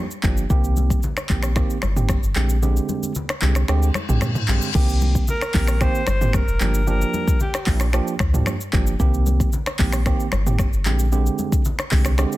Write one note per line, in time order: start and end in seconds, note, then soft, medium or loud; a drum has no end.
0.11 shaker medium
0.23 0.46 G1 medium
0.23 0.44 F3 medium
0.23 0.44 A#3 medium
0.23 0.44 D4 medium
0.23 0.44 G4 medium
0.23 kick loud
0.23 clap medium
0.23 high conga medium
0.23 shaker medium
0.37 shaker medium
0.50 0.94 C2 loud
0.50 0.99 D#3 medium
0.50 0.99 A#3 medium
0.50 0.99 C4 medium
0.50 0.99 G4 loud
0.50 kick loud
0.50 low conga medium
0.50 shaker medium
0.64 shaker medium
0.76 high conga medium
0.76 shaker medium
0.90 kick medium
0.90 high conga medium
0.90 shaker medium
1.03 low conga medium
1.03 shaker medium
1.17 finger snap medium
1.17 cross-stick medium
1.17 shaker soft
1.29 1.63 A#1 loud
1.29 1.50 D#3 medium
1.29 1.50 A#3 medium
1.29 1.50 C4 medium
1.29 1.50 G4 medium
1.29 kick medium
1.29 clap loud
1.29 high conga medium
1.29 shaker medium
1.43 finger snap medium
1.43 cross-stick medium
1.43 shaker loud
1.56 1.76 D#3 loud
1.56 1.76 A#3 medium
1.56 1.77 C4 medium
1.56 1.77 G4 loud
1.56 finger snap medium
1.56 kick loud
1.56 cross-stick medium
1.56 shaker medium
1.70 shaker medium
1.82 2.16 G1 medium
1.82 finger snap medium
1.82 cross-stick medium
1.82 high conga medium
1.82 shaker medium
1.96 2.16 D#3 medium
1.96 2.16 A#3 medium
1.96 2.16 C4 medium
1.96 2.16 G4 medium
1.96 mid tom loud
1.96 shaker medium
2.09 finger snap medium
2.09 kick medium
2.09 cross-stick medium
2.09 high conga medium
2.09 shaker medium
2.23 2.34 G1 medium
2.23 shaker medium
2.36 2.80 A#1 loud
2.36 2.56 D3 medium
2.36 2.56 G#3 medium
2.36 2.56 C4 medium
2.36 2.56 G4 medium
2.36 clap medium
2.36 high conga medium
2.36 shaker medium
2.50 shaker medium
2.62 3.11 D3 medium
2.62 3.11 G#3 medium
2.62 3.12 C4 medium
2.62 3.12 G4 loud
2.62 low conga medium
2.62 shaker medium
2.77 shaker medium
2.89 high conga medium
2.89 shaker medium
3.03 high conga medium
3.03 shaker medium
3.15 low conga medium
3.15 shaker medium
3.29 finger snap medium
3.29 cross-stick medium
3.29 shaker soft
3.42 3.64 C2 loud
3.42 3.62 D3 medium
3.42 3.62 G#3 medium
3.42 3.62 C4 medium
3.42 3.62 G4 medium
3.42 clap loud
3.42 high conga medium
3.42 shaker medium
3.55 finger snap medium
3.55 cross-stick medium
3.55 shaker loud
3.68 3.91 D2 loud
3.68 3.89 D3 medium
3.68 3.89 G#3 medium
3.68 3.89 C4 medium
3.68 3.89 G4 loud
3.68 finger snap medium
3.68 cross-stick medium
3.68 reverse cymbal medium
3.68 shaker medium
3.83 shaker medium
3.94 finger snap medium
3.94 cross-stick medium
3.94 high conga medium
3.94 shaker medium
4.09 4.20 A#1 loud
4.09 4.29 D3 medium
4.09 4.29 G#3 medium
4.09 4.29 C4 medium
4.09 4.29 G4 medium
4.09 mid tom loud
4.09 shaker medium
4.21 4.44 A#2 loud
4.21 finger snap medium
4.21 cross-stick medium
4.21 high conga medium
4.21 low conga medium
4.21 shaker medium
4.35 mid tom loud
4.35 shaker medium
4.48 4.60 A#1 medium
4.48 4.68 D3 medium
4.48 4.68 G#3 medium
4.48 4.69 C4 medium
4.48 4.69 G4 medium
4.48 clap medium
4.48 high conga medium
4.48 shaker medium
4.62 shaker medium
4.75 5.19 C2 loud
4.75 5.24 D#3 medium
4.75 5.24 A#3 medium
4.75 5.24 C4 medium
4.75 5.24 G4 loud
4.75 kick loud
4.75 crash loud
4.75 low conga medium
4.75 shaker medium
4.89 shaker medium
5.02 high conga medium
5.02 shaker medium
5.15 kick medium
5.15 high conga medium
5.15 shaker medium
5.28 5.84 A#4 loud
5.28 low conga medium
5.28 shaker medium
5.41 finger snap medium
5.41 cross-stick medium
5.41 shaker medium
5.54 5.88 A#1 loud
5.54 5.75 D#3 medium
5.54 5.75 A#3 medium
5.54 5.75 C4 medium
5.54 5.75 G4 medium
5.54 kick medium
5.54 clap loud
5.54 open hi-hat medium
5.54 high conga medium
5.54 shaker soft
5.67 finger snap medium
5.67 cross-stick medium
5.67 shaker loud
5.81 6.01 D#3 medium
5.81 6.01 A#3 medium
5.81 6.01 C4 medium
5.81 6.01 G4 loud
5.81 6.08 C5 loud
5.81 finger snap medium
5.81 kick loud
5.81 cross-stick medium
5.81 shaker medium
5.95 shaker medium
6.07 6.41 G1 medium
6.07 6.37 C5 loud
6.07 finger snap medium
6.07 cross-stick medium
6.07 high conga medium
6.07 shaker medium
6.21 6.41 D#3 medium
6.21 6.41 A#3 medium
6.21 6.41 C4 medium
6.21 6.41 G4 medium
6.21 mid tom loud
6.21 shaker medium
6.33 6.88 A#4 loud
6.33 finger snap medium
6.33 kick loud
6.33 cross-stick medium
6.33 high conga medium
6.33 shaker medium
6.48 6.58 F1 loud
6.48 shaker medium
6.61 7.05 G1 loud
6.61 6.81 F3 medium
6.61 6.81 A#3 medium
6.61 6.81 D4 medium
6.61 6.81 G4 medium
6.61 clap medium
6.61 high conga medium
6.61 shaker medium
6.74 shaker medium
6.87 7.36 F3 medium
6.87 7.36 A#3 medium
6.87 7.36 D4 medium
6.87 7.36 G4 loud
6.87 7.38 A#4 loud
6.87 low conga medium
6.87 shaker medium
7.01 shaker medium
7.14 high conga medium
7.14 shaker medium
7.27 kick medium
7.27 high conga medium
7.27 shaker medium
7.40 7.90 G4 medium
7.40 low conga medium
7.40 shaker medium
7.54 finger snap medium
7.54 cross-stick medium
7.54 shaker medium
7.67 8.00 A#1 loud
7.67 7.87 F3 medium
7.67 7.87 A#3 medium
7.67 7.87 D4 medium
7.67 7.87 G4 medium
7.67 kick loud
7.67 clap loud
7.67 open hi-hat medium
7.67 high conga medium
7.67 shaker medium
7.80 finger snap medium
7.80 cross-stick medium
7.80 shaker loud
7.93 8.14 F3 medium
7.93 8.14 A#3 medium
7.93 8.14 D4 medium
7.93 8.14 G4 loud
7.93 finger snap medium
7.93 cross-stick medium
7.93 shaker medium
8.07 shaker medium
8.19 8.42 D2 medium
8.19 finger snap medium
8.19 kick loud
8.19 cross-stick medium
8.19 high conga medium
8.19 shaker medium
8.34 8.53 F3 medium
8.34 8.53 A#3 medium
8.34 8.54 D4 medium
8.34 8.54 G4 medium
8.34 mid tom loud
8.34 shaker medium
8.46 finger snap medium
8.46 cross-stick loud
8.46 high conga medium
8.46 shaker medium
8.61 shaker medium
8.73 8.95 G1 medium
8.73 8.93 F3 medium
8.73 8.93 A#3 medium
8.73 8.93 D4 medium
8.73 8.93 G4 medium
8.73 kick loud
8.73 clap medium
8.73 high conga medium
8.73 shaker medium
8.87 shaker medium
9.00 9.44 C2 loud
9.00 9.49 D#3 medium
9.00 9.49 A#3 medium
9.00 9.49 C4 medium
9.00 9.49 G4 loud
9.00 kick loud
9.00 low conga medium
9.00 shaker medium
9.14 shaker medium
9.26 high conga medium
9.26 shaker medium
9.40 kick loud
9.40 high conga medium
9.40 shaker medium
9.53 low conga medium
9.53 shaker medium
9.66 finger snap medium
9.66 cross-stick medium
9.66 shaker soft
9.79 10.13 A#1 loud
9.79 9.99 D#3 medium
9.79 10.00 A#3 medium
9.79 10.00 C4 medium
9.79 10.00 G4 medium
9.79 kick medium
9.79 clap loud
9.79 open hi-hat medium
9.79 high conga medium
9.79 shaker medium
9.93 finger snap medium
9.93 cross-stick medium
9.93 shaker loud
10.06 10.26 D#3 medium
10.06 10.26 A#3 medium
10.06 10.26 C4 medium
10.06 10.26 G4 loud
10.06 finger snap medium
10.06 kick loud
10.06 cross-stick medium
10.06 shaker medium
10.20 shaker medium
10.32 10.66 G1 medium
10.32 finger snap medium
10.32 cross-stick medium
10.32 high conga medium
10.32 shaker medium
10.46 10.66 D#3 medium
10.46 10.66 A#3 medium
10.46 10.66 C4 medium
10.46 10.66 G4 medium
10.46 mid tom loud
10.46 shaker medium
10.59 finger snap medium
10.59 kick loud
10.59 cross-stick medium
10.59 high conga medium
10.59 shaker medium
10.73 10.87 G1 loud
10.73 shaker medium
10.85 11.29 A#1 loud
10.85 11.06 D3 medium
10.85 11.06 G#3 medium
10.85 11.06 C4 medium
10.85 11.06 G4 medium
10.85 clap medium
10.85 high conga medium
10.85 shaker medium
10.99 shaker medium
11.12 11.61 D3 medium
11.12 11.61 G#3 medium
11.12 11.61 C4 medium
11.12 11.61 G4 loud
11.12 low conga medium
11.12 shaker medium
11.26 shaker medium
11.38 high conga medium
11.38 shaker medium
11.52 kick loud
11.52 high conga medium
11.52 shaker medium
11.65 low conga medium
11.65 shaker medium
11.79 finger snap medium
11.79 cross-stick medium
11.79 shaker medium
11.91 12.25 C2 loud
11.91 12.12 D3 medium
11.91 12.12 G#3 medium
11.91 12.12 C4 medium
11.91 12.12 G4 medium
11.91 kick medium
11.91 clap loud
11.91 open hi-hat medium
11.91 high conga medium
11.91 shaker medium
12.05 finger snap medium
12.05 cross-stick medium
12.05 shaker loud
12.18 12.37 D3 loud
12.18 12.37 G#3 medium
12.18 12.37 C4 medium
12.18 12.37 G4 loud
12.18 finger snap medium
12.18 cross-stick loud
12.18 shaker medium
12.32 shaker medium